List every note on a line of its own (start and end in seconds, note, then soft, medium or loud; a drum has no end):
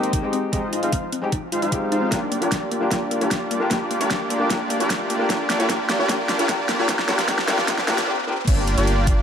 0.00 0.32 G#3 medium
0.00 0.20 A#3 loud
0.00 0.21 C4 medium
0.00 0.21 D#4 medium
0.00 0.32 D#4 medium
0.00 0.21 G4 loud
0.00 0.32 G4 medium
0.00 0.32 C5 medium
0.00 0.32 D#5 loud
0.00 closed hi-hat medium
0.00 riser medium
0.13 0.16 D#4 medium
0.13 kick medium
0.13 closed hi-hat medium
0.22 0.50 G#3 medium
0.22 0.50 C4 medium
0.22 0.51 D#4 medium
0.22 0.51 G4 medium
0.33 0.37 C4 medium
0.33 closed hi-hat medium
0.52 0.58 G#3 medium
0.52 0.81 G#3 loud
0.52 0.58 C4 medium
0.52 0.55 C4 medium
0.52 0.81 D#4 medium
0.52 0.58 D#4 medium
0.52 0.81 F4 medium
0.52 0.59 G4 loud
0.52 0.81 C5 medium
0.52 0.81 D#5 loud
0.52 kick loud
0.52 closed hi-hat medium
0.73 0.75 D#4 medium
0.73 closed hi-hat medium
0.82 0.88 G#3 medium
0.82 1.03 G#3 medium
0.82 0.88 C4 medium
0.82 1.03 D#4 medium
0.82 0.88 D#4 medium
0.82 1.03 F4 medium
0.82 0.89 F4 medium
0.82 1.04 C5 medium
0.82 1.03 F5 medium
0.82 closed hi-hat medium
0.93 0.97 C4 medium
0.93 kick medium
0.93 closed hi-hat medium
1.12 1.15 C4 medium
1.12 closed hi-hat medium
1.22 1.27 G#3 medium
1.22 1.28 C4 medium
1.22 1.28 D#4 medium
1.22 1.28 G4 medium
1.32 1.35 D#4 medium
1.32 kick medium
1.32 closed hi-hat medium
1.52 1.60 G#3 medium
1.52 1.60 D#4 medium
1.52 1.56 F4 medium
1.52 1.60 F4 medium
1.52 1.60 C5 medium
1.52 1.60 F5 loud
1.52 closed hi-hat medium
1.62 1.90 G#3 medium
1.62 1.90 D#4 medium
1.62 1.90 F4 medium
1.62 1.68 F4 medium
1.62 1.90 C5 medium
1.62 1.90 F5 loud
1.62 closed hi-hat medium
1.71 2.09 G#3 medium
1.71 2.09 C4 medium
1.71 2.10 D#4 medium
1.71 1.76 F4 medium
1.71 2.10 G4 medium
1.71 kick medium
1.71 closed hi-hat medium
1.92 2.10 G#3 loud
1.92 1.96 D#4 loud
1.92 2.10 D#4 medium
1.92 2.10 F4 medium
1.92 2.10 C5 medium
1.92 2.10 F5 loud
1.92 closed hi-hat medium
2.02 2.08 C4 medium
2.11 2.17 A#3 medium
2.11 2.16 A#3 medium
2.11 2.40 A#3 medium
2.11 2.17 D4 medium
2.11 2.40 D4 medium
2.11 2.40 F4 medium
2.11 2.17 F4 medium
2.11 2.40 G4 medium
2.11 2.18 G4 medium
2.11 2.40 D5 medium
2.11 kick loud
2.11 snare soft
2.11 closed hi-hat medium
2.32 2.34 A#3 medium
2.32 closed hi-hat medium
2.41 2.47 A#3 medium
2.41 2.90 A#3 medium
2.41 2.47 D4 medium
2.41 2.90 D4 medium
2.41 2.44 F4 medium
2.41 2.90 F4 medium
2.41 2.47 F4 medium
2.41 2.90 G4 medium
2.41 2.48 G4 medium
2.41 2.90 D5 medium
2.41 closed hi-hat medium
2.52 2.54 D4 medium
2.52 kick loud
2.52 snare soft
2.52 closed hi-hat medium
2.71 2.75 A#3 medium
2.71 closed hi-hat medium
2.81 2.86 A#3 medium
2.81 2.87 D4 medium
2.81 2.87 F4 medium
2.81 2.87 G4 medium
2.90 2.96 A#3 medium
2.90 3.19 A#3 medium
2.90 2.95 A#3 medium
2.90 2.97 D4 medium
2.90 3.19 D4 medium
2.90 3.19 F4 medium
2.90 2.97 F4 medium
2.90 3.19 G4 medium
2.90 2.97 G4 medium
2.90 3.19 D5 medium
2.90 kick loud
2.90 snare medium
2.90 closed hi-hat medium
3.11 3.14 A#3 medium
3.11 closed hi-hat medium
3.20 3.26 A#3 medium
3.20 3.69 A#3 medium
3.20 3.26 D4 medium
3.20 3.69 D4 medium
3.20 3.69 F4 medium
3.20 3.24 F4 medium
3.20 3.27 F4 medium
3.20 3.69 G4 medium
3.20 3.27 G4 medium
3.20 3.69 D5 medium
3.20 closed hi-hat medium
3.31 3.34 D4 medium
3.31 kick loud
3.31 snare medium
3.31 closed hi-hat medium
3.51 3.55 A#3 medium
3.51 closed hi-hat medium
3.60 3.66 A#3 medium
3.60 3.66 D4 medium
3.60 3.66 F4 medium
3.60 3.67 G4 loud
3.70 3.76 A#3 medium
3.70 3.75 A#3 medium
3.70 3.98 A#3 medium
3.70 3.76 D4 medium
3.70 3.98 D4 medium
3.70 3.98 F4 medium
3.70 3.76 F4 medium
3.70 3.98 G4 medium
3.70 3.77 G4 loud
3.70 3.98 D5 medium
3.70 kick loud
3.70 snare medium
3.70 closed hi-hat medium
3.91 3.93 A#3 medium
3.91 closed hi-hat medium
4.00 4.06 A#3 medium
4.00 4.49 A#3 medium
4.00 4.06 D4 medium
4.00 4.49 D4 medium
4.00 4.49 F4 medium
4.00 4.03 F4 medium
4.00 4.06 F4 medium
4.00 4.49 G4 medium
4.00 4.07 G4 medium
4.00 4.49 D5 medium
4.00 closed hi-hat medium
4.10 4.13 D4 medium
4.10 kick loud
4.10 snare medium
4.10 closed hi-hat medium
4.30 4.34 A#3 medium
4.30 closed hi-hat medium
4.40 4.45 A#3 medium
4.40 4.46 D4 medium
4.40 4.46 F4 medium
4.40 4.46 G4 medium
4.49 4.55 A#3 medium
4.49 4.54 A#3 medium
4.49 4.78 A#3 medium
4.49 4.55 D4 medium
4.49 4.78 D4 medium
4.49 4.78 F4 medium
4.49 4.56 F4 medium
4.49 4.78 G4 medium
4.49 4.56 G4 loud
4.49 4.78 D5 medium
4.49 kick loud
4.49 snare medium
4.49 closed hi-hat medium
4.70 4.73 A#3 medium
4.70 closed hi-hat medium
4.79 4.85 A#3 medium
4.79 5.28 A#3 medium
4.79 4.85 D4 medium
4.79 5.28 D4 medium
4.79 4.83 F4 medium
4.79 5.28 F4 medium
4.79 4.86 F4 medium
4.79 5.28 G4 medium
4.79 4.86 G4 medium
4.79 5.28 D5 medium
4.79 closed hi-hat medium
4.90 4.92 D4 medium
4.90 kick loud
4.90 snare medium
4.90 closed hi-hat medium
5.10 5.14 A#3 medium
5.10 closed hi-hat medium
5.19 5.25 A#3 medium
5.19 5.25 D4 medium
5.19 5.25 F4 medium
5.19 5.26 G4 loud
5.29 5.35 A#3 medium
5.29 5.57 A#3 medium
5.29 5.34 A#3 medium
5.29 5.35 D4 medium
5.29 5.57 D4 medium
5.29 5.57 F4 medium
5.29 5.35 F4 medium
5.29 5.57 G4 medium
5.29 5.36 G4 loud
5.29 5.57 D5 medium
5.29 kick loud
5.29 snare medium
5.29 closed hi-hat medium
5.50 5.52 A#3 medium
5.50 snare medium
5.50 closed hi-hat medium
5.59 5.64 A#3 medium
5.59 5.68 A#3 medium
5.59 5.65 D4 medium
5.59 5.68 D4 medium
5.59 5.68 F4 medium
5.59 5.62 F4 medium
5.59 5.65 F4 medium
5.59 5.68 G4 medium
5.59 5.65 G4 medium
5.59 5.68 D5 loud
5.59 closed hi-hat medium
5.69 5.74 A#3 loud
5.69 5.97 A#3 medium
5.69 5.73 A#3 medium
5.69 5.75 D4 medium
5.69 5.97 D4 medium
5.69 5.97 F4 medium
5.69 5.75 F4 medium
5.69 5.97 G4 medium
5.69 5.75 G4 loud
5.69 5.97 D5 medium
5.69 kick loud
5.69 snare medium
5.69 closed hi-hat medium
5.89 5.92 A#3 medium
5.89 snare medium
5.89 closed hi-hat medium
5.99 6.04 A#3 medium
5.99 6.08 A#3 medium
5.99 6.05 D4 medium
5.99 6.08 D4 medium
5.99 6.02 F4 medium
5.99 6.08 F4 medium
5.99 6.05 F4 medium
5.99 6.08 G4 medium
5.99 6.05 G4 medium
5.99 6.08 D5 medium
6.08 6.14 A#3 medium
6.08 6.37 A#3 medium
6.08 6.13 A#3 medium
6.08 6.14 D4 medium
6.08 6.37 D4 medium
6.08 6.37 F4 medium
6.08 6.15 F4 medium
6.08 6.37 G4 medium
6.08 6.15 G4 loud
6.08 6.37 D5 medium
6.08 kick loud
6.08 snare medium
6.08 closed hi-hat medium
6.29 6.32 A#3 medium
6.29 snare medium
6.29 closed hi-hat medium
6.38 6.44 A#3 medium
6.38 6.47 A#3 medium
6.38 6.44 D4 medium
6.38 6.47 D4 medium
6.38 6.47 F4 medium
6.38 6.42 F4 medium
6.38 6.45 F4 medium
6.38 6.47 G4 medium
6.38 6.45 G4 medium
6.38 6.47 D5 medium
6.38 closed hi-hat medium
6.48 6.54 A#3 loud
6.48 6.53 A#3 medium
6.48 6.77 A#3 medium
6.48 6.54 D4 medium
6.48 6.77 D4 medium
6.48 6.77 F4 medium
6.48 6.55 F4 medium
6.48 6.77 G4 medium
6.48 6.55 G4 loud
6.48 6.77 D5 medium
6.48 kick loud
6.48 snare medium
6.48 closed hi-hat medium
6.69 6.71 A#3 medium
6.69 snare medium
6.69 closed hi-hat medium
6.78 6.84 A#3 medium
6.78 6.87 A#3 medium
6.78 6.84 D4 medium
6.78 6.87 D4 medium
6.78 6.87 F4 medium
6.78 6.81 F4 medium
6.78 6.84 F4 medium
6.78 6.87 G4 medium
6.78 6.85 G4 medium
6.78 6.87 D5 loud
6.88 6.94 A#3 medium
6.88 7.07 A#3 medium
6.88 6.93 A#3 medium
6.88 6.94 D4 medium
6.88 7.07 D4 medium
6.88 7.07 F4 medium
6.88 6.94 F4 medium
6.88 7.07 G4 medium
6.88 6.95 G4 loud
6.88 7.07 D5 medium
6.88 kick loud
6.88 snare medium
6.88 closed hi-hat medium
6.99 snare medium
7.08 7.13 A#3 medium
7.08 7.27 A#3 medium
7.08 7.13 A#3 medium
7.08 7.14 D4 medium
7.08 7.27 D4 medium
7.08 7.27 F4 medium
7.08 7.14 F4 medium
7.08 7.27 G4 medium
7.08 7.15 G4 loud
7.08 7.27 D5 medium
7.08 snare medium
7.08 closed hi-hat medium
7.19 snare medium
7.19 closed hi-hat medium
7.28 7.33 A#3 loud
7.28 7.47 A#3 medium
7.28 7.32 A#3 medium
7.28 7.34 D4 medium
7.28 7.47 D4 medium
7.28 7.47 F4 medium
7.28 7.34 F4 medium
7.28 7.47 G4 medium
7.28 7.34 G4 loud
7.28 7.47 D5 medium
7.28 kick loud
7.28 snare medium
7.28 closed hi-hat medium
7.39 snare medium
7.48 7.53 A#3 loud
7.48 7.67 A#3 medium
7.48 7.52 A#3 medium
7.48 7.54 D4 medium
7.48 7.67 D4 medium
7.48 7.67 F4 medium
7.48 7.54 F4 medium
7.48 7.67 G4 medium
7.48 7.54 G4 loud
7.48 7.67 D5 medium
7.48 snare loud
7.48 closed hi-hat medium
7.58 snare medium
7.67 7.73 A#3 medium
7.67 7.87 A#3 medium
7.67 7.72 A#3 medium
7.67 7.73 D4 medium
7.67 7.87 D4 medium
7.67 7.86 F4 medium
7.67 7.74 F4 medium
7.67 7.87 G4 medium
7.67 7.74 G4 loud
7.67 7.86 D5 loud
7.67 kick loud
7.67 snare loud
7.67 closed hi-hat medium
7.78 snare medium
7.87 7.93 A#3 loud
7.87 8.06 A#3 medium
7.87 7.92 A#3 medium
7.87 7.93 D4 loud
7.87 8.06 D4 medium
7.87 8.06 F4 medium
7.87 7.94 F4 medium
7.87 8.06 G4 medium
7.87 7.94 G4 loud
7.87 8.06 D5 medium
7.87 snare loud
7.87 closed hi-hat medium
7.98 snare medium
7.98 closed hi-hat medium
8.07 8.13 A#3 loud
8.07 8.13 D4 medium
8.07 8.13 F4 medium
8.07 8.14 G4 loud
8.27 8.33 A#3 loud
8.27 8.33 D4 medium
8.27 8.33 F4 medium
8.27 8.34 G4 loud
8.48 8.76 G1 loud
8.48 8.75 A#3 medium
8.48 8.75 D4 medium
8.48 8.75 F4 medium
8.48 8.75 G4 medium
8.48 8.75 D5 medium
8.48 kick loud
8.48 closed hi-hat medium
8.48 crash loud
8.67 closed hi-hat medium
8.77 9.22 G1 loud
8.77 9.22 A#3 medium
8.77 9.22 D4 medium
8.77 9.22 F4 medium
8.77 9.22 G4 medium
8.77 9.22 D5 loud
8.77 closed hi-hat medium
8.87 closed hi-hat medium
9.07 kick loud
9.07 closed hi-hat medium